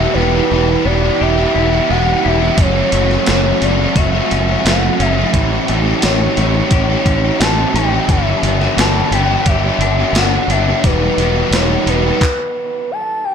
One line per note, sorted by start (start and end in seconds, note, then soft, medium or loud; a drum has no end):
0.00 0.50 E2 medium
0.00 0.50 B2 medium
0.00 0.17 E3 loud
0.00 0.17 G3 loud
0.00 0.17 B3 loud
0.00 0.16 B3 medium
0.00 0.17 E4 medium
0.00 0.17 G4 medium
0.00 0.18 G4 loud
0.00 0.15 E5 loud
0.14 0.40 E1 medium
0.14 0.35 E3 medium
0.14 0.51 E4 medium
0.14 0.86 B4 loud
0.18 0.33 G3 medium
0.18 0.33 B3 medium
0.18 0.32 G4 medium
0.33 0.52 E3 medium
0.33 0.51 G3 medium
0.33 0.52 B3 medium
0.33 0.52 G4 medium
0.51 0.75 E1 medium
0.51 1.20 E2 medium
0.51 1.20 B2 medium
0.51 0.85 E3 medium
0.51 0.85 G3 medium
0.51 0.86 B3 loud
0.51 0.87 E4 loud
0.51 0.87 G4 loud
0.85 1.09 E1 medium
0.85 1.05 E3 medium
0.85 1.03 G3 medium
0.85 1.02 B3 medium
0.85 1.03 E4 medium
0.85 1.02 G4 medium
0.85 1.23 D5 loud
1.03 1.20 E3 medium
1.03 1.20 G3 medium
1.03 1.21 B3 medium
1.03 1.38 E4 medium
1.03 1.21 G4 medium
1.20 1.45 E1 medium
1.20 1.40 E3 medium
1.20 1.38 G3 medium
1.20 1.38 B3 medium
1.20 1.36 G4 medium
1.20 1.92 E5 loud
1.38 1.74 E3 soft
1.38 1.73 G3 medium
1.38 1.72 B3 medium
1.38 1.55 E4 medium
1.38 1.72 G4 medium
1.54 1.79 E1 medium
1.54 1.88 E3 medium
1.54 1.73 B3 medium
1.54 2.24 E4 medium
1.54 1.73 E4 medium
1.54 1.70 G4 medium
1.73 1.90 E3 medium
1.73 1.89 G3 medium
1.73 1.89 B3 medium
1.73 1.90 E4 medium
1.73 1.90 G4 medium
1.89 2.14 E1 medium
1.89 2.56 E2 medium
1.89 2.56 B2 medium
1.89 2.23 E3 medium
1.89 2.24 G3 loud
1.89 2.24 B3 loud
1.89 2.25 E4 medium
1.89 2.25 G4 loud
1.89 2.28 F#5 loud
2.24 2.49 E1 medium
2.24 2.42 E3 medium
2.24 2.40 G3 medium
2.24 2.40 B3 medium
2.24 4.00 E4 medium
2.24 2.43 E4 medium
2.24 2.39 G4 medium
2.24 2.59 E5 loud
2.40 2.58 E3 medium
2.40 2.56 G3 medium
2.40 2.56 B3 medium
2.40 2.59 E4 medium
2.40 2.55 G4 medium
2.57 2.81 F#1 medium
2.57 3.26 F#2 medium
2.57 3.27 C#3 medium
2.57 3.27 E3 medium
2.57 2.91 F#3 medium
2.57 2.93 A3 loud
2.57 2.94 C#4 medium
2.57 2.93 F#4 loud
2.57 3.24 C#5 loud
2.57 kick loud
2.57 open hi-hat medium
2.76 2.93 A3 medium
2.76 2.93 C#4 medium
2.76 2.93 F#4 medium
2.92 3.16 F#1 medium
2.92 3.10 F#3 medium
2.92 3.11 A3 medium
2.92 3.10 C#4 medium
2.92 3.08 F#4 medium
2.92 open hi-hat medium
3.09 3.27 F#3 medium
3.09 3.28 A3 medium
3.09 3.28 C#4 medium
3.09 3.28 F#4 medium
3.09 snare soft
3.26 3.52 F#1 medium
3.26 3.96 F#2 medium
3.26 3.96 C#3 medium
3.26 5.34 E3 medium
3.26 3.61 F#3 medium
3.26 3.62 A3 medium
3.26 3.63 C#4 loud
3.26 3.63 F#4 medium
3.26 3.65 C#5 medium
3.26 snare loud
3.26 open hi-hat medium
3.62 3.85 F#1 medium
3.62 3.81 F#3 medium
3.62 3.80 A3 medium
3.62 3.79 C#4 medium
3.62 3.78 F#4 medium
3.62 3.99 D5 medium
3.62 open hi-hat soft
3.79 3.96 F#3 medium
3.79 3.97 A3 medium
3.79 3.97 C#4 medium
3.79 3.98 F#4 medium
3.96 4.19 F#1 medium
3.96 4.15 F#3 medium
3.96 4.14 A3 medium
3.96 4.13 C#4 medium
3.96 4.13 F#4 medium
3.96 4.68 E5 medium
3.96 kick loud
3.96 open hi-hat medium
4.14 4.49 F#3 medium
4.14 4.49 A3 medium
4.14 4.48 C#4 medium
4.14 4.47 F#4 medium
4.29 4.55 F#1 medium
4.29 4.61 F#3 medium
4.29 4.48 A3 medium
4.29 4.46 C#4 medium
4.29 4.99 C#4 medium
4.29 4.44 F#4 medium
4.29 snare soft
4.29 open hi-hat medium
4.48 4.65 F#3 medium
4.48 4.66 A3 medium
4.48 4.66 C#4 medium
4.48 4.66 F#4 medium
4.65 4.89 F#1 medium
4.65 5.32 F#2 medium
4.65 5.32 C#3 medium
4.65 4.99 F#3 medium
4.65 5.00 A3 medium
4.65 5.00 C#4 loud
4.65 5.01 F#4 loud
4.65 5.03 F#5 loud
4.65 snare loud
4.65 open hi-hat medium
5.00 5.23 F#1 medium
5.00 5.19 F#3 medium
5.00 5.18 A3 medium
5.00 5.17 C#4 medium
5.00 5.17 F#4 medium
5.00 5.69 E5 medium
5.00 open hi-hat medium
5.18 5.33 F#3 medium
5.18 5.33 A3 medium
5.18 5.33 C#4 medium
5.18 5.32 F#4 medium
5.34 5.58 A1 medium
5.34 6.02 A2 medium
5.34 5.69 E3 loud
5.34 5.70 G3 medium
5.34 5.70 C#4 medium
5.34 5.50 E4 medium
5.34 5.71 G4 loud
5.34 kick loud
5.34 open hi-hat medium
5.50 5.69 G3 medium
5.50 5.69 C#4 medium
5.50 5.71 E4 medium
5.68 5.93 A1 medium
5.68 6.04 E3 medium
5.68 5.89 G3 medium
5.68 6.36 A3 medium
5.68 5.87 C#4 medium
5.68 6.05 E4 medium
5.68 5.86 G4 medium
5.68 open hi-hat medium
5.87 6.04 G3 medium
5.87 6.04 C#4 medium
5.87 6.06 G4 medium
6.02 6.27 A1 medium
6.02 6.72 A2 medium
6.02 6.37 E3 medium
6.02 6.38 G3 medium
6.02 6.38 C#4 medium
6.02 6.38 E4 medium
6.02 6.40 G4 medium
6.02 6.68 C#5 loud
6.02 snare loud
6.02 open hi-hat medium
6.37 6.61 A1 medium
6.37 6.71 E3 medium
6.37 6.56 G3 medium
6.37 7.39 A3 medium
6.37 6.55 C#4 medium
6.37 6.53 E4 medium
6.37 6.54 G4 medium
6.37 open hi-hat medium
6.53 6.71 G3 medium
6.53 6.72 C#4 medium
6.53 6.88 E4 medium
6.53 6.73 G4 medium
6.71 6.95 A1 medium
6.71 7.41 E3 medium
6.71 6.91 G3 medium
6.71 6.88 C#4 medium
6.71 6.88 G4 medium
6.71 7.41 C#5 loud
6.71 kick loud
6.71 open hi-hat medium
6.88 7.26 G3 medium
6.88 7.23 C#4 medium
6.88 7.07 E4 medium
6.88 7.23 G4 medium
7.05 7.29 A1 medium
7.05 7.41 E3 medium
7.05 7.24 G3 medium
7.05 7.74 C#4 medium
7.05 7.23 C#4 medium
7.05 7.22 E4 medium
7.05 kick medium
7.05 open hi-hat medium
7.22 7.42 G3 medium
7.22 7.42 C#4 medium
7.22 7.43 E4 medium
7.22 7.43 G4 medium
7.39 7.64 A1 medium
7.39 8.07 A2 medium
7.39 7.75 E3 loud
7.39 7.76 G3 medium
7.39 8.09 A3 medium
7.39 7.76 C#4 medium
7.39 7.76 E4 loud
7.39 7.78 G4 medium
7.39 7.77 A5 loud
7.39 snare loud
7.39 open hi-hat medium
7.74 7.98 A1 medium
7.74 8.10 E3 medium
7.74 7.95 G3 medium
7.74 7.93 C#4 medium
7.74 7.91 E4 medium
7.74 7.92 G4 medium
7.74 8.12 G5 loud
7.74 open hi-hat medium
7.91 8.11 G3 medium
7.91 8.08 C#4 medium
7.91 8.11 E4 medium
7.91 8.12 G4 medium
8.08 8.32 G1 medium
8.08 8.78 G2 loud
8.08 8.78 D3 medium
8.08 8.77 E3 medium
8.08 8.43 G3 medium
8.08 8.44 B3 medium
8.08 8.45 D4 loud
8.08 8.45 G4 loud
8.08 8.78 E5 loud
8.08 kick loud
8.08 open hi-hat medium
8.27 8.44 G3 medium
8.27 8.44 B3 medium
8.27 8.44 D4 medium
8.43 8.67 G1 medium
8.43 8.77 D3 medium
8.43 8.63 G3 medium
8.43 8.62 B3 medium
8.43 8.60 D4 medium
8.43 8.60 G4 medium
8.43 open hi-hat medium
8.60 8.80 G3 medium
8.60 8.81 B3 medium
8.60 8.80 D4 medium
8.60 8.81 G4 medium
8.60 snare soft
8.77 9.01 G1 medium
8.77 9.47 G2 medium
8.77 9.48 D3 medium
8.77 10.50 E3 medium
8.77 9.13 G3 medium
8.77 9.14 B3 medium
8.77 9.14 D4 loud
8.77 9.15 A5 loud
8.77 snare loud
8.77 open hi-hat medium
8.82 9.15 G4 loud
9.11 9.35 G1 medium
9.11 9.63 D3 medium
9.11 9.32 G3 medium
9.11 9.31 B3 medium
9.11 9.30 D4 medium
9.11 9.49 G5 loud
9.11 open hi-hat medium
9.16 9.29 G4 medium
9.30 9.46 G3 medium
9.30 9.47 B3 medium
9.30 9.48 D4 medium
9.30 9.49 G4 medium
9.46 9.70 G1 medium
9.46 9.66 G3 medium
9.46 9.65 B3 medium
9.46 9.65 D4 medium
9.46 10.19 E5 loud
9.46 kick loud
9.46 open hi-hat medium
9.50 9.64 G4 medium
9.65 10.00 G3 medium
9.65 10.00 B3 medium
9.65 9.99 D4 medium
9.65 9.98 G4 medium
9.79 10.03 G1 medium
9.79 10.15 D3 medium
9.79 9.99 G3 medium
9.79 9.98 B3 medium
9.79 10.49 D4 medium
9.79 open hi-hat medium
9.83 9.97 D4 medium
9.99 10.17 G3 medium
9.99 10.17 B3 medium
9.99 10.17 D4 medium
9.99 10.18 G4 medium
10.13 10.37 G1 medium
10.13 10.83 G2 medium
10.13 snare loud
10.13 open hi-hat medium
10.17 10.83 D3 medium
10.17 10.49 G3 loud
10.17 10.50 B3 medium
10.17 10.51 D4 medium
10.17 10.51 G4 loud
10.17 10.53 F#5 loud
10.48 10.72 G1 medium
10.48 10.82 D3 medium
10.48 10.68 G3 medium
10.48 10.67 B3 medium
10.48 10.67 D4 medium
10.48 10.84 E5 loud
10.48 open hi-hat medium
10.53 10.66 G4 medium
10.67 10.83 G3 medium
10.67 10.83 B3 medium
10.67 10.83 D4 medium
10.67 10.82 G4 medium
10.84 11.08 E1 medium
10.84 11.52 E2 medium
10.84 11.52 B2 loud
10.84 11.17 E3 loud
10.84 11.18 G3 loud
10.84 11.19 B3 loud
10.84 11.00 E4 medium
10.84 11.20 G4 loud
10.84 11.56 B4 medium
10.84 kick loud
10.84 open hi-hat medium
11.01 11.17 G3 medium
11.01 11.19 B3 medium
11.01 11.20 E4 medium
11.18 11.42 E1 medium
11.18 11.38 E3 medium
11.18 11.37 G3 medium
11.18 11.36 B3 medium
11.18 11.54 E4 medium
11.18 11.35 G4 medium
11.18 open hi-hat medium
11.36 11.53 E3 medium
11.36 11.53 G3 medium
11.36 11.54 B3 medium
11.36 11.54 G4 medium
11.51 11.75 E1 medium
11.51 12.20 E2 medium
11.51 12.20 B2 medium
11.51 11.87 E3 medium
11.51 11.88 G3 medium
11.51 11.88 B3 loud
11.51 11.91 C#5 medium
11.51 snare loud
11.51 open hi-hat medium
11.55 11.89 E4 medium
11.55 11.89 G4 medium
11.86 12.10 E1 medium
11.86 12.05 E3 medium
11.86 12.05 G3 medium
11.86 12.04 B3 medium
11.86 12.03 G4 medium
11.86 12.91 B4 medium
11.86 open hi-hat medium
11.91 12.03 E4 medium
12.04 12.21 E3 medium
12.04 12.21 G3 medium
12.04 12.20 B3 medium
12.04 12.19 E4 medium
12.04 12.20 G4 medium
12.21 kick medium
12.21 clap medium
12.91 13.26 A5 loud
13.24 13.35 G5 loud